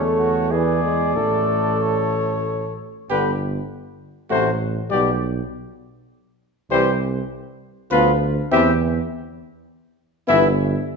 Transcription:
Already playing: E2 A3 A4 C#5
0.19 F#4
0.51 E3 G#4 D5
0.83 G#3
1.16 A1 A3 A4
1.82 C#5
3.10 G1 D3 B3 G4 B4
4.30 A1 C3 A3 F#4 C5
4.90 B1 B2 G3 G4 D5
6.71 C2 E3 G3 G4 C5
7.91 D2 F3 B3 F4 B4
8.51 E2 E3 C4 G4 E5
10.27 G1 E3 B3 E4 E5

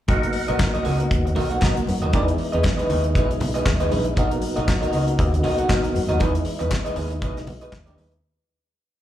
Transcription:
0.08 B1 A#3 B3 D#4 F#4 A#4 D#5, kick, closed hi-hat, muted conga
0.22 muted clean electric guitar stroke, closed hi-hat
0.33 muted clean electric guitar stroke, open hi-hat
0.48 B1 A#3 F#4 A#4 D#5, closed hi-hat
0.59 kick, snare, clap, high conga
0.74 A#3 F#4 A#4 D#5, closed hi-hat
0.84 C#2 A#3 F#4 A#4 D#5, open hi-hat
0.99 muted clean electric guitar stroke, closed hi-hat
1.11 D#2, muted clean electric guitar stroke, kick, closed hi-hat
1.25 muted clean electric guitar stroke, closed hi-hat
1.36 B1 A#3 F#4 A#4 D#5, open hi-hat, muted conga
1.50 A#3 F#4 A#4 F#5, closed hi-hat
1.62 B2 A#3 F#4 A#4 D#5, kick, snare, clap, high conga
1.76 muted clean electric guitar stroke, closed hi-hat
1.87 F#2, muted clean electric guitar stroke, open hi-hat, high conga
2.02 D#2 A#3 F#4 A#4 D#5, closed hi-hat
2.13 E2 G#3 B3 D#4 E4 G#4 B4 D#5, kick, closed hi-hat, muted conga
2.28 muted clean electric guitar stroke, closed hi-hat
2.38 muted clean electric guitar stroke, open hi-hat
2.52 E2 D#4 G#4 B4 D#5, closed hi-hat
2.64 muted clean electric guitar stroke, kick, snare, clap, high conga
2.77 D#4 G#4 B4 D#5, closed hi-hat
2.90 D#2 D#4 G#4 B4 D#5, open hi-hat, low conga
3.04 muted clean electric guitar stroke, closed hi-hat
3.15 B1 D#4 G#4 B4 D#5, kick, closed hi-hat
3.29 muted clean electric guitar stroke, closed hi-hat
3.40 B1, muted clean electric guitar stroke, open hi-hat, muted conga, low conga
3.54 D#4 G#4 B4 D#5, closed hi-hat
3.66 D#2, muted clean electric guitar stroke, kick, snare, clap, high conga
3.80 D#4 G#4 B4 D#5, closed hi-hat
3.91 A#1 D#4 G#4 B4 D#5, open hi-hat, high conga
4.05 muted clean electric guitar stroke, closed hi-hat
4.16 B1 A#3 D#4 F#4 A#4 D#5, kick, closed hi-hat, muted conga
4.31 muted clean electric guitar stroke, closed hi-hat
4.42 muted clean electric guitar stroke, open hi-hat
4.56 B1 D#4 F#4 A#4 D#5, closed hi-hat
4.67 muted clean electric guitar stroke, kick, snare, clap, high conga
4.81 D#4 F#4 A#4 D#5, closed hi-hat
4.92 C#2 D#4 F#4 A#4 D#5, open hi-hat
5.06 muted clean electric guitar stroke, closed hi-hat
5.18 D#2, muted clean electric guitar stroke, kick, closed hi-hat, muted conga
5.32 muted clean electric guitar stroke, closed hi-hat
5.43 B1 D#4 F#4 A#4 D#5, open hi-hat, muted conga
5.58 D#4 F#4 A#4 F#5, closed hi-hat
5.68 B2 D#4 F#4 A#4 D#5, kick, snare, clap, high conga
5.83 muted clean electric guitar stroke, closed hi-hat
5.94 F#2, muted clean electric guitar stroke, open hi-hat, high conga
6.09 D#2 D#4 F#4 A#4 D#5, closed hi-hat
6.19 E2 G#3 D#4 E4 G#4 B4 D#5, kick, closed hi-hat, muted conga
6.34 muted clean electric guitar stroke, closed hi-hat
6.45 muted clean electric guitar stroke, open hi-hat
6.59 E2 D#4 G#4 B4 D#5, closed hi-hat
6.70 muted clean electric guitar stroke, kick, snare, clap, high conga
6.85 D#4 G#4 B4 D#5, closed hi-hat
6.95 D#2 D#4 G#4 B4 D#5, open hi-hat, low conga
7.10 muted clean electric guitar stroke, closed hi-hat
7.22 B1 D#4 G#4 B4 D#5, kick, closed hi-hat
7.36 muted clean electric guitar stroke, snare, closed hi-hat
7.47 B1, muted clean electric guitar stroke, open hi-hat, muted conga, low conga
7.61 D#4 G#4 B4 D#5, closed hi-hat
7.72 D#2, kick, snare, clap, high conga
7.86 D#4 G#4 B4 D#5, closed hi-hat
7.97 D#2 D#4 G#4 B4 D#5, open hi-hat, high conga
8.12 muted clean electric guitar stroke, closed hi-hat

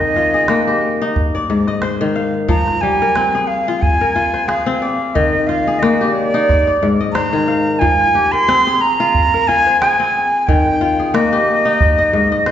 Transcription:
Already playing: D#3 C4 F4 G#4 C5 D5 D#5
0.00 calabash click
0.16 F4
0.34 G#4
0.48 A#3, calabash click
0.68 G4
1.02 D#4
1.16 calabash thump
1.35 D5
1.50 G#2
1.67 D#5, calabash click
1.82 C5, calabash click
2.01 D#3
2.16 F5
2.48 F3 A#5, calabash thump
2.68 calabash click
2.81 G3 G#5
3.02 A#4
3.15 C4, calabash click
3.35 G#4
3.47 F5
3.68 F4
3.82 G#5, calabash thump
4.01 A#4
4.16 F4
4.34 C5, calabash click
4.48 G#4 F5, calabash click
4.66 C4
4.82 D5
5.15 D#3 D#5, calabash thump, calabash click
5.47 F4 F5, calabash click
5.67 G#4
5.79 A#3 D#5, calabash click
6.01 G4
6.13 D5
6.34 D#4
6.49 calabash thump, calabash click
6.67 D5, calabash click
6.83 G#2
7.00 D#5
7.12 C5 A#5, calabash click
7.33 D#3
7.48 F5
7.79 F3 G#5, calabash thump
8.01 calabash click
8.15 G4
8.32 A#4 C6
8.48 C4, calabash click
8.67 G#4
8.81 A#5
9.00 F4
9.15 calabash thump
9.34 A#4
9.48 F4 G#5
9.66 C5, calabash click
9.81 G#4 G#5, calabash click
10.00 C4
10.47 D#3 G5, calabash thump
10.67 calabash click
10.81 F4
10.99 G#4
11.14 A#3 D#5, calabash click
11.33 G4
11.65 D#4
11.81 calabash thump
11.98 D#5
12.13 G#2
12.32 D#5, calabash click
12.46 C5, calabash click

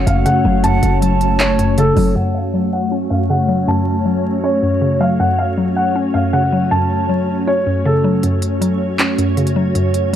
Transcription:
Already playing: F#3 A3 C#4 F#4 C#5 F#5
0.06 F#1 F#2 F5, closed hi-hat
0.26 C#3 F#5, closed hi-hat
0.45 F#1 F#3 F5
0.64 F#2 F#5 A5, closed hi-hat
0.83 F#1, closed hi-hat
1.02 F#3 A5, closed hi-hat
1.21 closed hi-hat
1.40 C#4 C#5, clap, closed hi-hat
1.59 F#2, closed hi-hat
1.78 C#3 A4, closed hi-hat
1.97 F#1 F#3, open hi-hat
2.16 F#2 A3 C#4 F#4 C#5 F#5
2.34 F5
2.54 F#3
2.73 F#5
2.92 C#4
3.10 F#2 F5
3.30 C#3 F#5
3.48 F#3
3.67 F#2 A5
4.06 F#3
4.44 C#4 C#5
4.63 F#2
4.81 C#3
5.00 F#3 F5
5.20 F#2 C#4 F#5
5.38 F5
5.58 F#3
5.76 F#5
5.95 C#4
6.14 F#2 F5
6.33 C#3 F#5
6.52 F#3
6.71 F#2 A5
7.09 F#3
7.47 C#4 C#5
7.66 F#2
7.85 C#3 A4
8.04 F#3
8.23 F#2 A3 C#4 F#4 C#5, closed hi-hat
8.42 closed hi-hat
8.61 F#3, closed hi-hat
8.99 C#4, clap, closed hi-hat
9.18 F#2, closed hi-hat
9.37 C#3, closed hi-hat
9.47 closed hi-hat
9.56 F#3
9.75 F#2, closed hi-hat
9.94 closed hi-hat

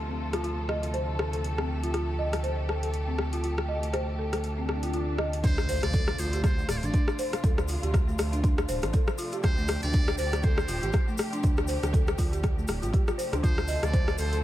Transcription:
Already playing: D2 C3 F3 A3 F4 A4
0.08 C4
0.33 F4, cross-stick, closed hi-hat
0.44 F4, closed hi-hat
0.69 D#5, cross-stick
0.83 closed hi-hat
0.94 C5, closed hi-hat
1.19 A4, cross-stick
1.33 A4, closed hi-hat
1.43 G4, closed hi-hat
1.58 C4, cross-stick
1.83 F4, closed hi-hat
1.94 F4, cross-stick, closed hi-hat
2.19 D#5
2.33 cross-stick, closed hi-hat
2.43 C5, closed hi-hat
2.69 A4, cross-stick
2.83 A4, closed hi-hat
2.94 closed hi-hat
3.08 C4
3.18 cross-stick
3.33 F4, closed hi-hat
3.43 F4, closed hi-hat
3.58 cross-stick
3.69 D#5
3.83 closed hi-hat
3.93 C5, cross-stick, closed hi-hat
4.19 A4
4.33 A4, cross-stick, closed hi-hat
4.44 closed hi-hat, swell
4.58 C4
4.69 cross-stick
4.83 F4, closed hi-hat
4.94 F4, closed hi-hat
5.18 D#5, cross-stick
5.33 closed hi-hat
5.44 D2 C3 F3 A3 D4 F4 C5, kick, closed hi-hat, crash, impact, shaker
5.58 cross-stick, shaker
5.69 C5, open hi-hat, shaker
5.82 D2 D5, cross-stick, closed hi-hat, shaker
5.93 A4, kick, closed hi-hat, shaker
6.08 cross-stick, shaker
6.18 D2 F4 C5, open hi-hat, shaker
6.33 G4, closed hi-hat, shaker
6.44 C5, kick, cross-stick, closed hi-hat, shaker
6.58 A3, shaker
6.69 D1 D5, cross-stick, open hi-hat, shaker
6.77 C5
6.83 A1 D4 D5, closed hi-hat, shaker
6.94 D4, kick, closed hi-hat, shaker
7.08 cross-stick, shaker
7.19 C5, open hi-hat, shaker
7.33 cross-stick, closed hi-hat, shaker
7.44 D2 A4, kick, closed hi-hat, shaker
7.58 cross-stick, shaker
7.68 F4, open hi-hat, shaker
7.83 D2 G4, closed hi-hat, shaker
7.94 kick, cross-stick, closed hi-hat, shaker
8.08 A3, shaker
8.19 D2, cross-stick, open hi-hat, shaker
8.33 D4, closed hi-hat, shaker
8.43 D4, kick, closed hi-hat, shaker
8.58 cross-stick, shaker
8.69 D1 C5, open hi-hat, shaker
8.82 A1, cross-stick, closed hi-hat, shaker
8.93 A4, kick, closed hi-hat, shaker
9.07 cross-stick, shaker
9.18 F4, open hi-hat, shaker
9.32 G4, closed hi-hat, shaker
9.43 D2 G4 C5, kick, cross-stick, closed hi-hat, shaker
9.58 A3, shaker
9.68 cross-stick, open hi-hat, shaker
9.83 D2 D4 D5, closed hi-hat, shaker
9.93 D4, kick, closed hi-hat, shaker
10.08 cross-stick, shaker
10.18 D2 C5 D5, open hi-hat, shaker
10.32 cross-stick, closed hi-hat, shaker
10.43 A4 C5, kick, closed hi-hat, shaker
10.58 cross-stick, shaker
10.68 D1 F4, open hi-hat, shaker
10.82 A1 G4, closed hi-hat, shaker
10.93 kick, cross-stick, closed hi-hat, shaker
11.08 A3, shaker
11.18 cross-stick, open hi-hat, shaker
11.32 D4, closed hi-hat, shaker
11.43 D2 D4, kick, closed hi-hat, shaker
11.57 cross-stick, shaker
11.67 C5, open hi-hat, shaker
11.83 D2, cross-stick, closed hi-hat, shaker
11.93 A4, kick, closed hi-hat, shaker
12.07 cross-stick, shaker
12.18 D2 F4, kick, open hi-hat, shaker
12.32 G4, closed hi-hat, shaker
12.43 kick, cross-stick, closed hi-hat, shaker
12.57 A3, shaker
12.68 D1, cross-stick, open hi-hat, shaker
12.82 A1 F4, closed hi-hat, shaker
12.93 G4, kick, closed hi-hat, shaker
13.07 F4, cross-stick, shaker
13.18 C5, open hi-hat, shaker
13.33 D2 D4, cross-stick, closed hi-hat, shaker
13.43 D2 F4 A4 C5, kick, closed hi-hat, shaker
13.58 cross-stick, shaker
13.68 D#5, open hi-hat, shaker
13.83 D2 D5, cross-stick, closed hi-hat, shaker
13.93 C5, kick, closed hi-hat, shaker
14.08 cross-stick, shaker
14.18 D2 A4 C5, open hi-hat, shaker
14.33 A4, closed hi-hat, shaker

